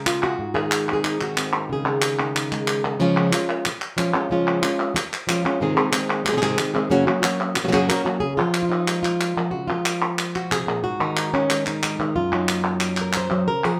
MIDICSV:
0, 0, Header, 1, 4, 480
1, 0, Start_track
1, 0, Key_signature, -5, "major"
1, 0, Tempo, 327332
1, 565, Time_signature, 4, 2, 24, 8
1, 20233, End_track
2, 0, Start_track
2, 0, Title_t, "Nylon-string guitar"
2, 0, Program_c, 0, 24
2, 0, Note_on_c, 0, 49, 68
2, 0, Note_on_c, 0, 56, 64
2, 0, Note_on_c, 0, 68, 100
2, 93, Note_on_c, 0, 65, 88
2, 334, Note_off_c, 0, 68, 0
2, 344, Note_on_c, 0, 66, 110
2, 534, Note_off_c, 0, 49, 0
2, 568, Note_off_c, 0, 65, 0
2, 570, Note_on_c, 0, 44, 70
2, 797, Note_on_c, 0, 68, 90
2, 814, Note_on_c, 0, 51, 71
2, 1291, Note_off_c, 0, 56, 0
2, 1292, Note_off_c, 0, 66, 0
2, 1297, Note_on_c, 0, 60, 51
2, 1350, Note_off_c, 0, 68, 0
2, 1367, Note_on_c, 0, 68, 82
2, 1527, Note_on_c, 0, 63, 56
2, 1764, Note_off_c, 0, 63, 0
2, 1766, Note_off_c, 0, 51, 0
2, 1782, Note_on_c, 0, 51, 66
2, 1792, Note_on_c, 0, 66, 91
2, 1997, Note_off_c, 0, 60, 0
2, 2014, Note_on_c, 0, 60, 42
2, 2243, Note_off_c, 0, 68, 0
2, 2453, Note_off_c, 0, 44, 0
2, 2458, Note_off_c, 0, 60, 0
2, 2483, Note_on_c, 0, 49, 69
2, 2495, Note_off_c, 0, 66, 0
2, 2532, Note_on_c, 0, 68, 86
2, 2705, Note_on_c, 0, 56, 62
2, 3225, Note_on_c, 0, 63, 48
2, 3430, Note_off_c, 0, 63, 0
2, 3448, Note_on_c, 0, 63, 48
2, 3670, Note_off_c, 0, 56, 0
2, 3694, Note_on_c, 0, 56, 64
2, 4159, Note_off_c, 0, 68, 0
2, 4177, Note_on_c, 0, 68, 40
2, 4368, Note_off_c, 0, 49, 0
2, 4371, Note_off_c, 0, 63, 0
2, 4377, Note_off_c, 0, 68, 0
2, 4385, Note_off_c, 0, 56, 0
2, 4391, Note_off_c, 0, 51, 0
2, 4392, Note_on_c, 0, 49, 96
2, 4397, Note_on_c, 0, 53, 88
2, 4403, Note_on_c, 0, 56, 82
2, 4417, Note_on_c, 0, 61, 102
2, 4425, Note_on_c, 0, 65, 94
2, 4855, Note_off_c, 0, 65, 0
2, 4862, Note_off_c, 0, 49, 0
2, 4865, Note_off_c, 0, 53, 0
2, 4868, Note_off_c, 0, 56, 0
2, 4870, Note_off_c, 0, 61, 0
2, 4873, Note_on_c, 0, 65, 61
2, 4887, Note_on_c, 0, 61, 46
2, 4902, Note_on_c, 0, 56, 44
2, 5342, Note_off_c, 0, 65, 0
2, 5349, Note_off_c, 0, 61, 0
2, 5357, Note_off_c, 0, 56, 0
2, 5818, Note_on_c, 0, 53, 60
2, 5830, Note_on_c, 0, 56, 66
2, 5839, Note_on_c, 0, 61, 71
2, 5854, Note_on_c, 0, 65, 67
2, 6054, Note_off_c, 0, 53, 0
2, 6058, Note_off_c, 0, 65, 0
2, 6060, Note_off_c, 0, 56, 0
2, 6064, Note_off_c, 0, 61, 0
2, 6075, Note_on_c, 0, 65, 58
2, 6092, Note_on_c, 0, 61, 60
2, 6103, Note_on_c, 0, 56, 47
2, 6302, Note_off_c, 0, 65, 0
2, 6302, Note_on_c, 0, 49, 83
2, 6303, Note_off_c, 0, 56, 0
2, 6311, Note_off_c, 0, 61, 0
2, 6317, Note_on_c, 0, 53, 82
2, 6321, Note_on_c, 0, 56, 80
2, 6337, Note_on_c, 0, 61, 96
2, 6339, Note_on_c, 0, 65, 93
2, 6762, Note_off_c, 0, 65, 0
2, 6774, Note_off_c, 0, 49, 0
2, 6779, Note_on_c, 0, 65, 56
2, 6782, Note_off_c, 0, 53, 0
2, 6782, Note_off_c, 0, 61, 0
2, 6784, Note_off_c, 0, 56, 0
2, 6800, Note_on_c, 0, 61, 59
2, 6811, Note_on_c, 0, 56, 44
2, 7243, Note_off_c, 0, 56, 0
2, 7251, Note_off_c, 0, 61, 0
2, 7252, Note_off_c, 0, 65, 0
2, 7732, Note_on_c, 0, 53, 68
2, 7746, Note_on_c, 0, 56, 61
2, 7756, Note_on_c, 0, 61, 73
2, 7765, Note_on_c, 0, 65, 68
2, 7968, Note_off_c, 0, 53, 0
2, 7968, Note_off_c, 0, 65, 0
2, 7975, Note_off_c, 0, 56, 0
2, 7980, Note_off_c, 0, 61, 0
2, 7986, Note_on_c, 0, 65, 54
2, 8004, Note_on_c, 0, 61, 64
2, 8017, Note_on_c, 0, 56, 48
2, 8214, Note_off_c, 0, 65, 0
2, 8218, Note_on_c, 0, 44, 82
2, 8223, Note_off_c, 0, 61, 0
2, 8224, Note_off_c, 0, 56, 0
2, 8228, Note_on_c, 0, 48, 89
2, 8237, Note_on_c, 0, 51, 107
2, 8241, Note_on_c, 0, 56, 89
2, 8245, Note_on_c, 0, 60, 88
2, 8250, Note_on_c, 0, 68, 89
2, 8435, Note_off_c, 0, 68, 0
2, 8449, Note_off_c, 0, 60, 0
2, 8450, Note_off_c, 0, 44, 0
2, 8453, Note_on_c, 0, 68, 66
2, 8455, Note_off_c, 0, 48, 0
2, 8456, Note_off_c, 0, 56, 0
2, 8459, Note_off_c, 0, 51, 0
2, 8467, Note_on_c, 0, 60, 65
2, 8474, Note_on_c, 0, 56, 58
2, 8482, Note_on_c, 0, 51, 54
2, 8660, Note_off_c, 0, 68, 0
2, 8672, Note_off_c, 0, 60, 0
2, 8678, Note_on_c, 0, 68, 61
2, 8682, Note_off_c, 0, 56, 0
2, 8689, Note_on_c, 0, 60, 61
2, 8691, Note_off_c, 0, 51, 0
2, 8700, Note_on_c, 0, 56, 54
2, 8709, Note_on_c, 0, 51, 47
2, 9151, Note_off_c, 0, 51, 0
2, 9154, Note_off_c, 0, 56, 0
2, 9158, Note_off_c, 0, 68, 0
2, 9159, Note_off_c, 0, 60, 0
2, 9214, Note_on_c, 0, 48, 54
2, 9218, Note_on_c, 0, 56, 66
2, 9222, Note_on_c, 0, 60, 58
2, 9225, Note_on_c, 0, 68, 69
2, 9256, Note_off_c, 0, 48, 0
2, 9267, Note_off_c, 0, 56, 0
2, 9268, Note_off_c, 0, 60, 0
2, 9274, Note_on_c, 0, 48, 69
2, 9277, Note_off_c, 0, 68, 0
2, 9281, Note_on_c, 0, 51, 73
2, 9285, Note_on_c, 0, 56, 77
2, 9286, Note_on_c, 0, 60, 72
2, 9295, Note_on_c, 0, 68, 71
2, 9325, Note_off_c, 0, 48, 0
2, 9327, Note_off_c, 0, 51, 0
2, 9327, Note_off_c, 0, 56, 0
2, 9332, Note_off_c, 0, 60, 0
2, 9336, Note_off_c, 0, 68, 0
2, 9343, Note_on_c, 0, 48, 86
2, 9345, Note_on_c, 0, 51, 77
2, 9345, Note_on_c, 0, 56, 89
2, 9349, Note_on_c, 0, 60, 91
2, 9354, Note_on_c, 0, 68, 96
2, 9395, Note_off_c, 0, 48, 0
2, 9395, Note_off_c, 0, 56, 0
2, 9400, Note_off_c, 0, 51, 0
2, 9404, Note_off_c, 0, 60, 0
2, 9408, Note_on_c, 0, 44, 82
2, 9411, Note_off_c, 0, 68, 0
2, 9413, Note_on_c, 0, 48, 102
2, 9413, Note_on_c, 0, 56, 91
2, 9417, Note_on_c, 0, 51, 93
2, 9421, Note_on_c, 0, 60, 105
2, 9428, Note_on_c, 0, 68, 102
2, 9628, Note_off_c, 0, 51, 0
2, 9643, Note_off_c, 0, 44, 0
2, 9646, Note_off_c, 0, 48, 0
2, 9646, Note_off_c, 0, 56, 0
2, 9646, Note_on_c, 0, 51, 64
2, 9650, Note_off_c, 0, 60, 0
2, 9653, Note_off_c, 0, 68, 0
2, 9661, Note_on_c, 0, 56, 58
2, 9668, Note_on_c, 0, 60, 72
2, 9675, Note_on_c, 0, 68, 71
2, 9865, Note_off_c, 0, 68, 0
2, 9878, Note_off_c, 0, 60, 0
2, 9882, Note_off_c, 0, 51, 0
2, 9882, Note_on_c, 0, 68, 64
2, 9889, Note_off_c, 0, 56, 0
2, 9896, Note_on_c, 0, 60, 54
2, 9904, Note_on_c, 0, 56, 58
2, 9918, Note_on_c, 0, 51, 48
2, 10113, Note_on_c, 0, 42, 93
2, 10118, Note_on_c, 0, 49, 94
2, 10120, Note_off_c, 0, 68, 0
2, 10125, Note_off_c, 0, 51, 0
2, 10126, Note_off_c, 0, 60, 0
2, 10127, Note_off_c, 0, 56, 0
2, 10131, Note_on_c, 0, 54, 84
2, 10133, Note_on_c, 0, 58, 90
2, 10138, Note_on_c, 0, 61, 97
2, 10147, Note_on_c, 0, 66, 102
2, 10341, Note_off_c, 0, 66, 0
2, 10355, Note_off_c, 0, 42, 0
2, 10357, Note_off_c, 0, 49, 0
2, 10357, Note_off_c, 0, 61, 0
2, 10359, Note_on_c, 0, 66, 58
2, 10364, Note_off_c, 0, 54, 0
2, 10365, Note_off_c, 0, 58, 0
2, 10375, Note_on_c, 0, 61, 57
2, 10384, Note_on_c, 0, 58, 51
2, 10391, Note_on_c, 0, 54, 47
2, 10570, Note_off_c, 0, 66, 0
2, 10587, Note_on_c, 0, 66, 60
2, 10591, Note_off_c, 0, 61, 0
2, 10598, Note_off_c, 0, 58, 0
2, 10607, Note_off_c, 0, 54, 0
2, 10608, Note_on_c, 0, 61, 66
2, 10616, Note_on_c, 0, 58, 51
2, 10625, Note_on_c, 0, 54, 46
2, 11071, Note_off_c, 0, 66, 0
2, 11075, Note_off_c, 0, 54, 0
2, 11075, Note_off_c, 0, 58, 0
2, 11082, Note_off_c, 0, 61, 0
2, 11193, Note_on_c, 0, 49, 60
2, 11197, Note_on_c, 0, 54, 58
2, 11203, Note_on_c, 0, 58, 61
2, 11211, Note_on_c, 0, 61, 57
2, 11216, Note_on_c, 0, 66, 62
2, 11248, Note_off_c, 0, 49, 0
2, 11249, Note_off_c, 0, 54, 0
2, 11249, Note_off_c, 0, 58, 0
2, 11256, Note_off_c, 0, 61, 0
2, 11260, Note_off_c, 0, 66, 0
2, 11266, Note_on_c, 0, 49, 75
2, 11267, Note_on_c, 0, 54, 77
2, 11267, Note_on_c, 0, 58, 84
2, 11274, Note_on_c, 0, 61, 72
2, 11277, Note_on_c, 0, 66, 78
2, 11314, Note_off_c, 0, 54, 0
2, 11316, Note_off_c, 0, 49, 0
2, 11320, Note_off_c, 0, 58, 0
2, 11321, Note_off_c, 0, 61, 0
2, 11326, Note_on_c, 0, 42, 91
2, 11327, Note_off_c, 0, 66, 0
2, 11332, Note_on_c, 0, 54, 82
2, 11334, Note_on_c, 0, 49, 83
2, 11338, Note_on_c, 0, 58, 100
2, 11338, Note_on_c, 0, 61, 92
2, 11341, Note_on_c, 0, 68, 101
2, 11345, Note_on_c, 0, 66, 97
2, 11546, Note_off_c, 0, 54, 0
2, 11560, Note_off_c, 0, 68, 0
2, 11561, Note_off_c, 0, 42, 0
2, 11561, Note_off_c, 0, 58, 0
2, 11564, Note_on_c, 0, 54, 64
2, 11565, Note_off_c, 0, 49, 0
2, 11566, Note_on_c, 0, 70, 116
2, 11567, Note_off_c, 0, 61, 0
2, 11570, Note_off_c, 0, 66, 0
2, 11579, Note_on_c, 0, 58, 61
2, 11590, Note_on_c, 0, 61, 63
2, 11600, Note_on_c, 0, 66, 75
2, 11783, Note_off_c, 0, 66, 0
2, 11795, Note_off_c, 0, 70, 0
2, 11800, Note_off_c, 0, 54, 0
2, 11800, Note_off_c, 0, 61, 0
2, 11801, Note_on_c, 0, 66, 60
2, 11807, Note_off_c, 0, 58, 0
2, 11818, Note_on_c, 0, 61, 55
2, 11827, Note_on_c, 0, 58, 50
2, 11833, Note_on_c, 0, 54, 44
2, 12023, Note_off_c, 0, 66, 0
2, 12028, Note_on_c, 0, 68, 110
2, 12047, Note_off_c, 0, 61, 0
2, 12048, Note_on_c, 0, 49, 72
2, 12051, Note_off_c, 0, 58, 0
2, 12054, Note_off_c, 0, 54, 0
2, 12272, Note_off_c, 0, 68, 0
2, 12278, Note_on_c, 0, 65, 88
2, 12292, Note_off_c, 0, 49, 0
2, 12306, Note_on_c, 0, 53, 62
2, 12634, Note_off_c, 0, 65, 0
2, 12651, Note_on_c, 0, 65, 71
2, 12749, Note_on_c, 0, 63, 81
2, 13019, Note_on_c, 0, 56, 55
2, 13221, Note_off_c, 0, 65, 0
2, 13239, Note_on_c, 0, 65, 89
2, 13721, Note_off_c, 0, 53, 0
2, 13725, Note_off_c, 0, 63, 0
2, 13739, Note_on_c, 0, 53, 58
2, 13947, Note_on_c, 0, 66, 94
2, 13950, Note_off_c, 0, 53, 0
2, 13971, Note_on_c, 0, 49, 65
2, 14170, Note_off_c, 0, 65, 0
2, 14188, Note_on_c, 0, 65, 78
2, 14204, Note_off_c, 0, 66, 0
2, 14216, Note_off_c, 0, 49, 0
2, 14225, Note_on_c, 0, 53, 61
2, 15168, Note_off_c, 0, 65, 0
2, 15188, Note_on_c, 0, 66, 98
2, 15411, Note_on_c, 0, 48, 53
2, 15425, Note_on_c, 0, 68, 100
2, 15427, Note_off_c, 0, 66, 0
2, 15642, Note_off_c, 0, 48, 0
2, 15648, Note_on_c, 0, 46, 57
2, 15880, Note_off_c, 0, 53, 0
2, 15880, Note_on_c, 0, 44, 72
2, 15886, Note_off_c, 0, 68, 0
2, 15892, Note_on_c, 0, 66, 115
2, 15898, Note_off_c, 0, 46, 0
2, 15908, Note_off_c, 0, 56, 0
2, 16132, Note_on_c, 0, 51, 64
2, 16140, Note_on_c, 0, 63, 90
2, 16618, Note_off_c, 0, 63, 0
2, 16623, Note_off_c, 0, 66, 0
2, 16624, Note_on_c, 0, 61, 85
2, 16874, Note_on_c, 0, 56, 51
2, 17110, Note_off_c, 0, 61, 0
2, 17120, Note_on_c, 0, 63, 90
2, 17344, Note_off_c, 0, 56, 0
2, 17362, Note_on_c, 0, 56, 45
2, 17570, Note_off_c, 0, 51, 0
2, 17587, Note_on_c, 0, 51, 65
2, 17794, Note_off_c, 0, 44, 0
2, 17827, Note_on_c, 0, 65, 97
2, 17828, Note_on_c, 0, 42, 69
2, 17832, Note_off_c, 0, 51, 0
2, 17840, Note_off_c, 0, 63, 0
2, 17841, Note_off_c, 0, 56, 0
2, 18069, Note_on_c, 0, 63, 75
2, 18072, Note_on_c, 0, 54, 69
2, 18329, Note_on_c, 0, 58, 51
2, 18555, Note_off_c, 0, 65, 0
2, 19038, Note_off_c, 0, 63, 0
2, 19080, Note_on_c, 0, 70, 95
2, 19308, Note_off_c, 0, 70, 0
2, 19314, Note_on_c, 0, 72, 101
2, 19503, Note_off_c, 0, 54, 0
2, 19520, Note_on_c, 0, 54, 65
2, 19735, Note_off_c, 0, 42, 0
2, 19736, Note_off_c, 0, 54, 0
2, 19744, Note_off_c, 0, 58, 0
2, 19755, Note_on_c, 0, 49, 67
2, 19757, Note_off_c, 0, 72, 0
2, 19763, Note_on_c, 0, 70, 112
2, 20003, Note_off_c, 0, 49, 0
2, 20009, Note_on_c, 0, 53, 66
2, 20015, Note_off_c, 0, 70, 0
2, 20015, Note_on_c, 0, 68, 96
2, 20233, Note_off_c, 0, 53, 0
2, 20233, Note_off_c, 0, 68, 0
2, 20233, End_track
3, 0, Start_track
3, 0, Title_t, "Muted nylon-string guitar strokes"
3, 5364, Note_on_c, 9, 29, 70
3, 5511, Note_off_c, 9, 29, 0
3, 7252, Note_on_c, 9, 29, 72
3, 7398, Note_off_c, 9, 29, 0
3, 9160, Note_on_c, 9, 29, 76
3, 9306, Note_off_c, 9, 29, 0
3, 11081, Note_on_c, 9, 29, 77
3, 11228, Note_off_c, 9, 29, 0
3, 20233, End_track
4, 0, Start_track
4, 0, Title_t, "Drums"
4, 95, Note_on_c, 9, 39, 98
4, 242, Note_off_c, 9, 39, 0
4, 330, Note_on_c, 9, 39, 50
4, 477, Note_off_c, 9, 39, 0
4, 809, Note_on_c, 9, 39, 50
4, 956, Note_off_c, 9, 39, 0
4, 1047, Note_on_c, 9, 39, 101
4, 1193, Note_off_c, 9, 39, 0
4, 1532, Note_on_c, 9, 39, 83
4, 1679, Note_off_c, 9, 39, 0
4, 1773, Note_on_c, 9, 39, 65
4, 1920, Note_off_c, 9, 39, 0
4, 2012, Note_on_c, 9, 39, 90
4, 2159, Note_off_c, 9, 39, 0
4, 2959, Note_on_c, 9, 39, 92
4, 3106, Note_off_c, 9, 39, 0
4, 3463, Note_on_c, 9, 39, 83
4, 3610, Note_off_c, 9, 39, 0
4, 3697, Note_on_c, 9, 39, 62
4, 3844, Note_off_c, 9, 39, 0
4, 3925, Note_on_c, 9, 39, 91
4, 4071, Note_off_c, 9, 39, 0
4, 4879, Note_on_c, 9, 39, 92
4, 5026, Note_off_c, 9, 39, 0
4, 5356, Note_on_c, 9, 39, 85
4, 5502, Note_off_c, 9, 39, 0
4, 5595, Note_on_c, 9, 39, 71
4, 5742, Note_off_c, 9, 39, 0
4, 5839, Note_on_c, 9, 39, 83
4, 5986, Note_off_c, 9, 39, 0
4, 6793, Note_on_c, 9, 39, 105
4, 6939, Note_off_c, 9, 39, 0
4, 7279, Note_on_c, 9, 39, 83
4, 7425, Note_off_c, 9, 39, 0
4, 7527, Note_on_c, 9, 39, 76
4, 7673, Note_off_c, 9, 39, 0
4, 7758, Note_on_c, 9, 39, 96
4, 7905, Note_off_c, 9, 39, 0
4, 8001, Note_on_c, 9, 39, 51
4, 8147, Note_off_c, 9, 39, 0
4, 8693, Note_on_c, 9, 39, 95
4, 8840, Note_off_c, 9, 39, 0
4, 8942, Note_on_c, 9, 39, 54
4, 9089, Note_off_c, 9, 39, 0
4, 9182, Note_on_c, 9, 39, 93
4, 9329, Note_off_c, 9, 39, 0
4, 9419, Note_on_c, 9, 39, 76
4, 9565, Note_off_c, 9, 39, 0
4, 9653, Note_on_c, 9, 39, 91
4, 9799, Note_off_c, 9, 39, 0
4, 10607, Note_on_c, 9, 39, 99
4, 10754, Note_off_c, 9, 39, 0
4, 10857, Note_on_c, 9, 39, 48
4, 11003, Note_off_c, 9, 39, 0
4, 11081, Note_on_c, 9, 39, 86
4, 11227, Note_off_c, 9, 39, 0
4, 11332, Note_on_c, 9, 39, 60
4, 11479, Note_off_c, 9, 39, 0
4, 11583, Note_on_c, 9, 39, 89
4, 11730, Note_off_c, 9, 39, 0
4, 12526, Note_on_c, 9, 39, 81
4, 12672, Note_off_c, 9, 39, 0
4, 13017, Note_on_c, 9, 39, 76
4, 13163, Note_off_c, 9, 39, 0
4, 13268, Note_on_c, 9, 39, 62
4, 13414, Note_off_c, 9, 39, 0
4, 13505, Note_on_c, 9, 39, 79
4, 13652, Note_off_c, 9, 39, 0
4, 14453, Note_on_c, 9, 39, 92
4, 14600, Note_off_c, 9, 39, 0
4, 14935, Note_on_c, 9, 39, 80
4, 15082, Note_off_c, 9, 39, 0
4, 15186, Note_on_c, 9, 39, 55
4, 15332, Note_off_c, 9, 39, 0
4, 15421, Note_on_c, 9, 39, 80
4, 15568, Note_off_c, 9, 39, 0
4, 15669, Note_on_c, 9, 39, 51
4, 15816, Note_off_c, 9, 39, 0
4, 16379, Note_on_c, 9, 39, 92
4, 16525, Note_off_c, 9, 39, 0
4, 16865, Note_on_c, 9, 39, 80
4, 17011, Note_off_c, 9, 39, 0
4, 17102, Note_on_c, 9, 39, 69
4, 17249, Note_off_c, 9, 39, 0
4, 17349, Note_on_c, 9, 39, 83
4, 17496, Note_off_c, 9, 39, 0
4, 18307, Note_on_c, 9, 39, 93
4, 18453, Note_off_c, 9, 39, 0
4, 18775, Note_on_c, 9, 39, 79
4, 18922, Note_off_c, 9, 39, 0
4, 19015, Note_on_c, 9, 39, 64
4, 19162, Note_off_c, 9, 39, 0
4, 19253, Note_on_c, 9, 39, 87
4, 19400, Note_off_c, 9, 39, 0
4, 20233, End_track
0, 0, End_of_file